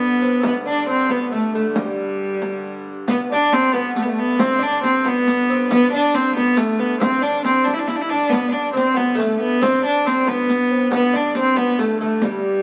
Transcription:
0.00 3.08 G2 medium
0.00 3.07 D3 medium
0.00 0.22 B3 medium
0.00 0.39 B3 medium
0.00 0.45 B3 medium
0.22 0.38 C4 medium
0.40 0.68 B3 medium
0.40 0.44 C4 medium
0.40 frame drum medium
0.44 0.64 B3 medium
0.44 0.55 B3 medium
0.66 0.88 D4 medium
0.66 1.12 D4 medium
0.66 0.87 D4 medium
0.87 1.09 C4 medium
0.87 1.12 C4 medium
1.09 1.31 B3 medium
1.09 1.34 B3 medium
1.09 1.32 B3 medium
1.09 frame drum medium
1.32 1.52 A3 medium
1.32 1.53 A3 medium
1.53 1.76 A3 medium
1.53 1.77 A3 medium
1.53 1.63 A3 medium
1.70 2.85 G3 medium
1.70 1.81 A3 medium
1.76 2.81 G3 medium
1.76 2.87 G3 medium
1.76 frame drum medium
2.42 frame drum medium
2.86 frame drum soft
3.07 8.30 G2 medium
3.07 8.31 D3 medium
3.07 3.28 B3 medium
3.07 3.19 B3 loud
3.07 3.29 B3 medium
3.07 riq medium
3.07 frame drum medium
3.30 3.55 D4 medium
3.30 3.76 D4 medium
3.30 3.54 D4 loud
3.53 3.75 C4 loud
3.53 3.72 C4 medium
3.53 riq medium
3.73 4.08 B3 medium
3.73 3.95 B3 loud
3.73 4.39 B3 medium
3.73 frame drum medium
3.96 4.04 A3 medium
3.96 riq medium
4.02 4.10 B3 medium
4.06 4.40 A3 medium
4.06 4.20 A3 medium
4.19 4.41 B3 medium
4.38 4.60 C4 medium
4.38 4.64 C4 loud
4.38 4.62 C4 medium
4.38 riq medium
4.38 frame drum medium
4.59 4.80 D4 medium
4.59 5.05 D4 medium
4.59 4.83 D4 loud
4.81 5.05 C4 medium
4.81 5.09 C4 loud
4.81 riq medium
5.04 5.70 B3 loud
5.04 5.49 B3 medium
5.04 5.71 B3 loud
5.04 frame drum medium
5.27 riq medium
5.50 5.70 C4 medium
5.70 5.92 B3 medium
5.70 5.91 B3 medium
5.70 5.91 B3 loud
5.70 riq medium
5.70 frame drum medium
5.91 6.15 D4 medium
5.91 6.16 D4 medium
5.91 6.38 D4 medium
6.13 6.34 C4 medium
6.13 6.36 C4 loud
6.13 riq medium
6.35 6.59 B3 medium
6.35 6.59 B3 loud
6.35 6.57 B3 medium
6.35 frame drum medium
6.57 6.79 A3 medium
6.57 7.01 A3 medium
6.57 6.81 A3 medium
6.57 riq medium
6.79 7.00 B3 medium
7.00 7.23 C4 medium
7.00 7.24 C4 medium
7.00 riq medium
7.00 frame drum medium
7.21 7.44 D4 medium
7.21 7.47 D4 medium
7.21 7.44 D4 loud
7.44 7.65 C4 medium
7.44 7.67 C4 medium
7.44 7.66 C4 loud
7.44 riq medium
7.44 frame drum soft
7.64 7.75 D4 medium
7.64 riq soft
7.64 frame drum medium
7.73 7.80 E4 medium
7.79 7.89 D4 medium
7.87 7.97 E4 medium
7.87 riq medium
7.87 frame drum soft
7.96 8.03 D4 medium
8.01 8.11 E4 medium
8.10 8.31 D4 loud
8.10 8.32 D4 medium
8.10 8.33 D4 medium
8.10 frame drum soft
8.29 12.62 G2 medium
8.29 12.62 D3 medium
8.29 8.54 B3 medium
8.29 8.53 B3 medium
8.29 8.52 B3 medium
8.29 riq medium
8.29 frame drum medium
8.48 8.71 D4 medium
8.48 8.73 D4 medium
8.73 8.93 C4 medium
8.73 8.98 C4 loud
8.73 8.95 C4 medium
8.73 riq medium
8.94 9.15 B3 medium
8.94 9.17 B3 medium
8.94 9.13 B3 medium
8.94 frame drum medium
9.13 9.61 A3 medium
9.13 9.21 B3 medium
9.17 9.42 A3 medium
9.17 9.40 A3 medium
9.17 riq medium
9.40 9.62 B3 medium
9.40 9.64 B3 medium
9.61 9.84 C4 medium
9.61 10.03 C4 medium
9.61 9.84 C4 loud
9.61 riq medium
9.61 frame drum medium
9.82 10.06 D4 medium
9.82 10.07 D4 loud
10.04 10.29 C4 medium
10.04 10.26 C4 medium
10.04 10.30 C4 loud
10.04 riq medium
10.26 10.89 B3 medium
10.26 10.70 B3 loud
10.26 10.92 B3 loud
10.26 frame drum medium
10.49 riq medium
10.70 10.95 C4 medium
10.91 11.12 B3 medium
10.91 11.17 B3 loud
10.91 11.15 B3 medium
10.91 riq medium
10.91 frame drum medium
11.13 11.59 D4 medium
11.13 11.37 D4 medium
11.13 11.35 D4 medium
11.35 11.60 C4 medium
11.35 11.58 C4 loud
11.35 riq medium
11.56 11.78 B3 medium
11.56 11.81 B3 loud
11.56 11.83 B3 medium
11.56 frame drum medium
11.79 12.00 A3 medium
11.79 riq medium
12.01 12.23 A3 medium
12.01 12.26 A3 medium
12.21 12.62 G3 medium
12.21 riq medium
12.21 frame drum medium

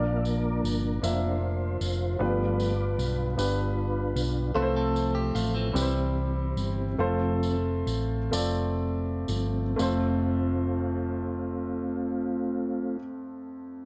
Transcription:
0.00 0.60 A#1 medium
0.00 0.99 A#2 medium
0.00 0.99 F3 soft
0.00 0.90 A#3 medium
0.00 0.99 A#3 soft
0.00 0.90 D4 medium
0.00 0.99 D4 medium
0.00 0.90 F4 medium
0.00 0.62 A#4 medium
0.00 0.90 A#4 medium
0.00 0.24 D5 medium
0.00 0.91 D5 medium
0.00 0.19 F5 loud
0.17 0.24 E5 medium
0.25 0.65 D5 medium
0.25 tambourine soft
0.63 1.00 G1 medium
0.63 1.04 A#4 medium
0.63 tambourine soft
1.02 1.77 F1 medium
1.02 1.38 F3 soft
1.02 2.07 A#3 medium
1.02 1.38 A#3 soft
1.02 2.08 D4 medium
1.02 1.39 D4 soft
1.02 2.08 F4 soft
1.02 2.17 F4 medium
1.02 2.08 A#4 medium
1.02 2.24 C5 medium
1.02 2.08 E5 medium
1.02 tambourine medium
1.81 2.17 F1 medium
1.81 tambourine medium
2.19 2.95 G1 medium
2.19 3.34 G2 medium
2.19 2.73 F3 soft
2.19 2.73 A3 soft
2.19 3.25 B3 medium
2.19 2.73 B3 medium
2.19 3.25 D4 medium
2.19 3.25 F4 medium
2.19 3.35 F4 medium
2.19 3.26 G4 medium
2.19 3.26 B4 medium
2.19 2.98 B4 medium
2.19 3.02 D5 medium
2.60 tambourine soft
2.98 3.35 B1 medium
2.98 3.35 B4 medium
2.98 tambourine soft
3.37 4.12 G1 medium
3.37 4.43 B3 medium
3.37 4.51 D4 soft
3.37 4.43 D4 soft
3.37 4.52 F4 soft
3.37 4.43 F4 soft
3.37 4.43 G4 soft
3.37 4.22 B4 medium
3.37 4.44 B4 medium
3.37 tambourine medium
4.16 4.52 B1 medium
4.16 tambourine soft
4.54 5.31 C2 medium
4.54 5.71 C3 medium
4.54 5.70 F3 soft
4.54 5.62 A3 medium
4.54 5.71 A3 soft
4.54 5.62 C4 medium
4.54 5.71 C4 medium
4.54 4.75 E4 soft
4.54 5.62 F4 medium
4.54 5.62 A4 medium
4.54 4.63 B4 medium
4.54 4.74 C5 medium
4.62 5.65 C5 loud
4.76 5.14 C4 medium
4.76 5.14 A4 medium
4.96 tambourine soft
5.15 5.34 G4 medium
5.35 5.72 A1 medium
5.35 5.54 A3 medium
5.35 5.54 F4 medium
5.35 tambourine soft
5.55 5.94 E3 medium
5.55 5.93 C4 medium
5.73 6.53 C2 medium
5.73 6.95 C3 medium
5.73 6.95 E3 soft
5.73 6.85 G3 medium
5.73 6.95 G3 soft
5.73 6.85 C4 medium
5.73 6.96 C4 medium
5.73 6.85 E4 medium
5.73 6.86 G4 medium
5.73 5.82 B4 medium
5.73 tambourine medium
5.82 6.89 C5 medium
6.56 6.96 G1 medium
6.56 tambourine soft
6.99 7.83 F1 loud
6.99 7.57 F3 medium
6.99 8.17 A3 medium
6.99 7.57 A3 soft
6.99 8.17 C4 medium
6.99 7.58 C4 medium
6.99 8.18 F4 medium
6.99 8.18 A4 medium
6.99 8.18 C5 medium
7.43 tambourine soft
7.86 8.29 A1 medium
7.86 tambourine soft
8.31 9.24 F1 medium
8.31 9.62 A3 medium
8.31 9.62 C4 medium
8.31 9.62 F4 medium
8.31 9.62 A4 medium
8.31 9.63 D5 medium
8.31 tambourine medium
9.28 9.75 G1 medium
9.28 9.75 F3 soft
9.28 9.75 A3 soft
9.28 9.75 C4 soft
9.28 tambourine soft
9.76 12.97 F1 medium
9.76 12.97 F2 medium
9.76 12.94 A3 medium
9.76 12.98 A3 medium
9.76 12.95 C4 medium
9.76 12.97 C4 medium
9.76 12.97 F4 medium
9.76 tambourine medium
9.81 12.98 A4 medium
9.81 12.99 C5 medium

